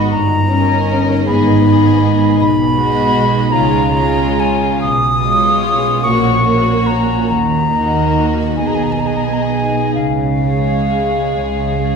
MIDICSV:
0, 0, Header, 1, 8, 480
1, 0, Start_track
1, 0, Tempo, 758534
1, 75, Time_signature, 6, 3, 24, 8
1, 1994, Tempo, 807537
1, 2474, Tempo, 887574
1, 2954, Tempo, 817439
1, 4394, Tempo, 854701
1, 5354, Tempo, 934579
1, 6870, End_track
2, 0, Start_track
2, 0, Title_t, "Flute"
2, 0, Program_c, 0, 73
2, 0, Note_on_c, 0, 83, 66
2, 68, Note_off_c, 0, 83, 0
2, 71, Note_on_c, 0, 82, 79
2, 632, Note_off_c, 0, 82, 0
2, 805, Note_on_c, 0, 83, 73
2, 1495, Note_off_c, 0, 83, 0
2, 1523, Note_on_c, 0, 83, 89
2, 2214, Note_on_c, 0, 82, 77
2, 2223, Note_off_c, 0, 83, 0
2, 2712, Note_on_c, 0, 80, 66
2, 2720, Note_off_c, 0, 82, 0
2, 2933, Note_off_c, 0, 80, 0
2, 2936, Note_on_c, 0, 87, 85
2, 3655, Note_on_c, 0, 85, 66
2, 3664, Note_off_c, 0, 87, 0
2, 4140, Note_on_c, 0, 82, 62
2, 4149, Note_off_c, 0, 85, 0
2, 4388, Note_off_c, 0, 82, 0
2, 4391, Note_on_c, 0, 82, 67
2, 4934, Note_off_c, 0, 82, 0
2, 5105, Note_on_c, 0, 80, 48
2, 5167, Note_on_c, 0, 82, 50
2, 5175, Note_off_c, 0, 80, 0
2, 5209, Note_on_c, 0, 80, 43
2, 5218, Note_off_c, 0, 82, 0
2, 5257, Note_on_c, 0, 82, 47
2, 5265, Note_off_c, 0, 80, 0
2, 5307, Note_on_c, 0, 80, 48
2, 5315, Note_off_c, 0, 82, 0
2, 5346, Note_on_c, 0, 82, 46
2, 5355, Note_off_c, 0, 80, 0
2, 5388, Note_on_c, 0, 80, 48
2, 5395, Note_off_c, 0, 82, 0
2, 5436, Note_on_c, 0, 82, 51
2, 5444, Note_off_c, 0, 80, 0
2, 5474, Note_on_c, 0, 80, 45
2, 5481, Note_off_c, 0, 82, 0
2, 5522, Note_on_c, 0, 82, 45
2, 5530, Note_off_c, 0, 80, 0
2, 5566, Note_on_c, 0, 80, 55
2, 5573, Note_off_c, 0, 82, 0
2, 5833, Note_off_c, 0, 80, 0
2, 5836, Note_on_c, 0, 77, 51
2, 6870, Note_off_c, 0, 77, 0
2, 6870, End_track
3, 0, Start_track
3, 0, Title_t, "Violin section"
3, 0, Program_c, 1, 48
3, 0, Note_on_c, 1, 75, 46
3, 69, Note_off_c, 1, 75, 0
3, 316, Note_on_c, 1, 75, 41
3, 793, Note_off_c, 1, 75, 0
3, 800, Note_on_c, 1, 75, 44
3, 1036, Note_off_c, 1, 75, 0
3, 1044, Note_on_c, 1, 75, 46
3, 1510, Note_off_c, 1, 75, 0
3, 1751, Note_on_c, 1, 75, 49
3, 2214, Note_off_c, 1, 75, 0
3, 2220, Note_on_c, 1, 73, 46
3, 2464, Note_off_c, 1, 73, 0
3, 2471, Note_on_c, 1, 73, 48
3, 2943, Note_off_c, 1, 73, 0
3, 3194, Note_on_c, 1, 73, 46
3, 3650, Note_off_c, 1, 73, 0
3, 3657, Note_on_c, 1, 73, 43
3, 3890, Note_off_c, 1, 73, 0
3, 3897, Note_on_c, 1, 73, 44
3, 4377, Note_off_c, 1, 73, 0
3, 4620, Note_on_c, 1, 75, 46
3, 5089, Note_off_c, 1, 75, 0
3, 5105, Note_on_c, 1, 75, 35
3, 5338, Note_off_c, 1, 75, 0
3, 5345, Note_on_c, 1, 75, 39
3, 5825, Note_off_c, 1, 75, 0
3, 6078, Note_on_c, 1, 73, 38
3, 6779, Note_off_c, 1, 73, 0
3, 6792, Note_on_c, 1, 73, 34
3, 6870, Note_off_c, 1, 73, 0
3, 6870, End_track
4, 0, Start_track
4, 0, Title_t, "Violin section"
4, 0, Program_c, 2, 48
4, 0, Note_on_c, 2, 66, 39
4, 70, Note_off_c, 2, 66, 0
4, 326, Note_on_c, 2, 70, 42
4, 800, Note_off_c, 2, 70, 0
4, 807, Note_on_c, 2, 68, 43
4, 1036, Note_off_c, 2, 68, 0
4, 1044, Note_on_c, 2, 68, 44
4, 1509, Note_off_c, 2, 68, 0
4, 1749, Note_on_c, 2, 66, 40
4, 2213, Note_off_c, 2, 66, 0
4, 2216, Note_on_c, 2, 65, 42
4, 2458, Note_off_c, 2, 65, 0
4, 2465, Note_on_c, 2, 65, 45
4, 2940, Note_off_c, 2, 65, 0
4, 3197, Note_on_c, 2, 65, 39
4, 3658, Note_off_c, 2, 65, 0
4, 3664, Note_on_c, 2, 66, 44
4, 3901, Note_off_c, 2, 66, 0
4, 3915, Note_on_c, 2, 66, 44
4, 4387, Note_off_c, 2, 66, 0
4, 4629, Note_on_c, 2, 66, 36
4, 5094, Note_off_c, 2, 66, 0
4, 5122, Note_on_c, 2, 68, 38
4, 5357, Note_off_c, 2, 68, 0
4, 5370, Note_on_c, 2, 68, 38
4, 5837, Note_off_c, 2, 68, 0
4, 6092, Note_on_c, 2, 68, 31
4, 6786, Note_off_c, 2, 68, 0
4, 6809, Note_on_c, 2, 68, 33
4, 6870, Note_off_c, 2, 68, 0
4, 6870, End_track
5, 0, Start_track
5, 0, Title_t, "Harp"
5, 0, Program_c, 3, 46
5, 0, Note_on_c, 3, 44, 41
5, 0, Note_on_c, 3, 59, 40
5, 0, Note_on_c, 3, 63, 32
5, 0, Note_on_c, 3, 66, 41
5, 78, Note_on_c, 3, 43, 52
5, 98, Note_off_c, 3, 59, 0
5, 99, Note_off_c, 3, 44, 0
5, 99, Note_off_c, 3, 66, 0
5, 318, Note_on_c, 3, 61, 40
5, 562, Note_off_c, 3, 63, 0
5, 569, Note_on_c, 3, 63, 38
5, 569, Note_on_c, 3, 70, 39
5, 803, Note_on_c, 3, 44, 52
5, 825, Note_off_c, 3, 61, 0
5, 827, Note_off_c, 3, 43, 0
5, 829, Note_off_c, 3, 70, 0
5, 1039, Note_on_c, 3, 59, 38
5, 1275, Note_off_c, 3, 63, 0
5, 1280, Note_on_c, 3, 63, 36
5, 1287, Note_on_c, 3, 68, 38
5, 1523, Note_on_c, 3, 47, 54
5, 1538, Note_off_c, 3, 44, 0
5, 1749, Note_on_c, 3, 56, 41
5, 1983, Note_off_c, 3, 63, 0
5, 1989, Note_on_c, 3, 63, 35
5, 1992, Note_on_c, 3, 66, 42
5, 2219, Note_on_c, 3, 49, 59
5, 2240, Note_off_c, 3, 59, 0
5, 2243, Note_off_c, 3, 63, 0
5, 2243, Note_off_c, 3, 66, 0
5, 2245, Note_off_c, 3, 47, 0
5, 2470, Note_on_c, 3, 61, 40
5, 2706, Note_off_c, 3, 61, 0
5, 2711, Note_on_c, 3, 61, 38
5, 2716, Note_on_c, 3, 65, 38
5, 2947, Note_on_c, 3, 47, 55
5, 2971, Note_off_c, 3, 49, 0
5, 3184, Note_off_c, 3, 56, 0
5, 3191, Note_on_c, 3, 56, 37
5, 3420, Note_off_c, 3, 61, 0
5, 3423, Note_off_c, 3, 65, 0
5, 3427, Note_on_c, 3, 61, 37
5, 3430, Note_on_c, 3, 65, 39
5, 3593, Note_off_c, 3, 68, 0
5, 3663, Note_on_c, 3, 46, 45
5, 3683, Note_off_c, 3, 47, 0
5, 3683, Note_off_c, 3, 56, 0
5, 3686, Note_off_c, 3, 65, 0
5, 3905, Note_on_c, 3, 58, 37
5, 4144, Note_off_c, 3, 61, 0
5, 4152, Note_on_c, 3, 61, 31
5, 4154, Note_on_c, 3, 66, 36
5, 4396, Note_on_c, 3, 51, 49
5, 4409, Note_off_c, 3, 46, 0
5, 4413, Note_off_c, 3, 61, 0
5, 4634, Note_on_c, 3, 63, 38
5, 4869, Note_off_c, 3, 63, 0
5, 4870, Note_off_c, 3, 66, 0
5, 4874, Note_on_c, 3, 63, 31
5, 4878, Note_on_c, 3, 66, 37
5, 5111, Note_on_c, 3, 47, 42
5, 5122, Note_off_c, 3, 58, 0
5, 5125, Note_off_c, 3, 51, 0
5, 5129, Note_off_c, 3, 66, 0
5, 5357, Note_on_c, 3, 59, 33
5, 5589, Note_off_c, 3, 63, 0
5, 5595, Note_on_c, 3, 63, 27
5, 5599, Note_on_c, 3, 68, 28
5, 5842, Note_on_c, 3, 49, 42
5, 5859, Note_off_c, 3, 63, 0
5, 5860, Note_off_c, 3, 59, 0
5, 5861, Note_off_c, 3, 47, 0
5, 6080, Note_off_c, 3, 68, 0
5, 6086, Note_on_c, 3, 68, 34
5, 6319, Note_on_c, 3, 61, 29
5, 6556, Note_off_c, 3, 68, 0
5, 6562, Note_on_c, 3, 68, 33
5, 6800, Note_off_c, 3, 61, 0
5, 6806, Note_on_c, 3, 61, 27
5, 6870, Note_off_c, 3, 49, 0
5, 6870, Note_off_c, 3, 61, 0
5, 6870, Note_off_c, 3, 68, 0
5, 6870, End_track
6, 0, Start_track
6, 0, Title_t, "Viola section"
6, 0, Program_c, 4, 48
6, 306, Note_on_c, 4, 61, 53
6, 790, Note_off_c, 4, 61, 0
6, 804, Note_on_c, 4, 59, 43
6, 1033, Note_off_c, 4, 59, 0
6, 1040, Note_on_c, 4, 59, 45
6, 1508, Note_off_c, 4, 59, 0
6, 1753, Note_on_c, 4, 56, 50
6, 2211, Note_off_c, 4, 56, 0
6, 2219, Note_on_c, 4, 56, 45
6, 2450, Note_off_c, 4, 56, 0
6, 2457, Note_on_c, 4, 56, 44
6, 2937, Note_off_c, 4, 56, 0
6, 3194, Note_on_c, 4, 56, 49
6, 3656, Note_off_c, 4, 56, 0
6, 3668, Note_on_c, 4, 58, 44
6, 3890, Note_off_c, 4, 58, 0
6, 3897, Note_on_c, 4, 58, 46
6, 4377, Note_off_c, 4, 58, 0
6, 4615, Note_on_c, 4, 58, 45
6, 5087, Note_off_c, 4, 58, 0
6, 5089, Note_on_c, 4, 59, 37
6, 5341, Note_off_c, 4, 59, 0
6, 5347, Note_on_c, 4, 59, 34
6, 5825, Note_off_c, 4, 59, 0
6, 6077, Note_on_c, 4, 56, 40
6, 6778, Note_off_c, 4, 56, 0
6, 6799, Note_on_c, 4, 56, 30
6, 6870, Note_off_c, 4, 56, 0
6, 6870, End_track
7, 0, Start_track
7, 0, Title_t, "Cello section"
7, 0, Program_c, 5, 48
7, 68, Note_on_c, 5, 43, 50
7, 716, Note_off_c, 5, 43, 0
7, 801, Note_on_c, 5, 44, 56
7, 1436, Note_off_c, 5, 44, 0
7, 1522, Note_on_c, 5, 47, 59
7, 2143, Note_off_c, 5, 47, 0
7, 2221, Note_on_c, 5, 49, 59
7, 2869, Note_off_c, 5, 49, 0
7, 2957, Note_on_c, 5, 47, 58
7, 3585, Note_off_c, 5, 47, 0
7, 3667, Note_on_c, 5, 46, 56
7, 4306, Note_off_c, 5, 46, 0
7, 4385, Note_on_c, 5, 51, 57
7, 5015, Note_off_c, 5, 51, 0
7, 5099, Note_on_c, 5, 47, 45
7, 5749, Note_off_c, 5, 47, 0
7, 5836, Note_on_c, 5, 49, 40
7, 6469, Note_off_c, 5, 49, 0
7, 6556, Note_on_c, 5, 49, 45
7, 6870, Note_off_c, 5, 49, 0
7, 6870, End_track
8, 0, Start_track
8, 0, Title_t, "Double bass section"
8, 0, Program_c, 6, 48
8, 75, Note_on_c, 6, 31, 57
8, 720, Note_off_c, 6, 31, 0
8, 809, Note_on_c, 6, 32, 56
8, 1440, Note_off_c, 6, 32, 0
8, 1520, Note_on_c, 6, 35, 58
8, 2142, Note_off_c, 6, 35, 0
8, 2225, Note_on_c, 6, 37, 55
8, 2871, Note_off_c, 6, 37, 0
8, 2947, Note_on_c, 6, 35, 59
8, 3579, Note_off_c, 6, 35, 0
8, 3668, Note_on_c, 6, 34, 53
8, 4306, Note_off_c, 6, 34, 0
8, 4395, Note_on_c, 6, 39, 61
8, 5020, Note_off_c, 6, 39, 0
8, 5100, Note_on_c, 6, 35, 46
8, 5750, Note_off_c, 6, 35, 0
8, 5836, Note_on_c, 6, 37, 46
8, 6470, Note_off_c, 6, 37, 0
8, 6555, Note_on_c, 6, 37, 44
8, 6870, Note_off_c, 6, 37, 0
8, 6870, End_track
0, 0, End_of_file